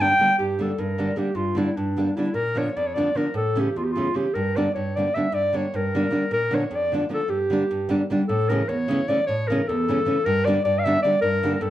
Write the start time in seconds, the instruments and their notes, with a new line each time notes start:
0.00 nylon-string guitar D3 G3 A#3 D4, clarinet G5
0.19 nylon-string guitar D3 G3 A#3 D4
0.39 nylon-string guitar G2, clarinet G4
0.59 nylon-string guitar D3 G3 A#3 D4, clarinet A4
0.78 nylon-string guitar G2, clarinet A#4
0.98 nylon-string guitar D3 G3 A#3 D4
1.16 nylon-string guitar D3 G3 A#3 D4, clarinet G4
1.35 nylon-string guitar G2, clarinet F4
1.55 nylon-string guitar D3 G3 A#3 D4, clarinet E4
1.76 nylon-string guitar G2, clarinet D4
1.96 nylon-string guitar D3 G3 A#3 D4
2.16 nylon-string guitar D3 G3 A#3 D4, clarinet E4
2.34 nylon-string guitar A#2, clarinet A#4
2.55 nylon-string guitar D3 F3 A#3 D4, clarinet C#5
2.77 nylon-string guitar F2, clarinet D5
2.87 clarinet C#5
2.94 nylon-string guitar D3 F3 A#3 D4, clarinet D5
3.15 nylon-string guitar D3 F3 A#3 D4, clarinet A#4
3.34 nylon-string guitar A2, clarinet A4
3.55 nylon-string guitar C#3 E3 A3 C#4
3.60 clarinet G4
3.76 nylon-string guitar E2, clarinet F4
3.84 clarinet G4
3.92 nylon-string guitar C#3, clarinet F4
3.97 nylon-string guitar E3 A3 C#4
4.14 nylon-string guitar C#3 E3 A3 C#4, clarinet G4
4.34 nylon-string guitar G2, clarinet A#4
4.56 nylon-string guitar D3 G3 A#3 D4, clarinet D5
4.75 nylon-string guitar G2, clarinet C#5
4.96 nylon-string guitar D3 G3 A#3 D4, clarinet D5
5.14 nylon-string guitar D3 G3 A#3 D4, clarinet E5
5.32 nylon-string guitar G2, clarinet D5
5.53 nylon-string guitar D3 G3 A#3 D4, clarinet C#5
5.74 nylon-string guitar G2, clarinet A#4
5.95 nylon-string guitar D3 G3 A#3 D4
6.10 nylon-string guitar D3 G3 A#3 D4
6.31 nylon-string guitar A#2, clarinet A#4
6.51 nylon-string guitar D3 F3 A#3 D4
6.55 clarinet C#5
6.71 nylon-string guitar F2
6.75 clarinet D5
6.92 nylon-string guitar D3 F3 A#3 D4
7.09 nylon-string guitar D3 F3 A#3 D4
7.14 clarinet A4
7.28 nylon-string guitar G2, clarinet G4
7.50 nylon-string guitar D3 G3 A#3 D4
7.71 nylon-string guitar G2
7.89 nylon-string guitar D3 G3 A#3 D4
8.10 nylon-string guitar D3 G3 A#3 D4
8.27 nylon-string guitar A2, clarinet A4
8.49 nylon-string guitar C#3 E3 A3 C#4, clarinet A#4
8.69 nylon-string guitar E2, clarinet C#5
8.88 nylon-string guitar C#3 E3 A3 C#4
9.08 nylon-string guitar C#3 E3 A3 C#4, clarinet D5
9.27 nylon-string guitar A2, clarinet C#5
9.48 nylon-string guitar C#3 E3 A3 C#4, clarinet A#4
9.67 nylon-string guitar E2, clarinet A4
9.88 nylon-string guitar C#3 E3 A3 C#4
10.05 nylon-string guitar C#3 E3 A3 C#4
10.25 nylon-string guitar G2, clarinet A#4
10.45 nylon-string guitar D3 G3 A#3 D4, clarinet D5
10.64 nylon-string guitar G2, clarinet D5
10.79 clarinet F5
10.84 nylon-string guitar D3 G3 A#3 D4, clarinet E5
11.03 nylon-string guitar D3 G3 A#3 D4, clarinet D5
11.22 nylon-string guitar G2, clarinet A#4
11.43 nylon-string guitar D3 G3 A#3 D4
11.55 clarinet A#4
11.61 nylon-string guitar G2, clarinet A4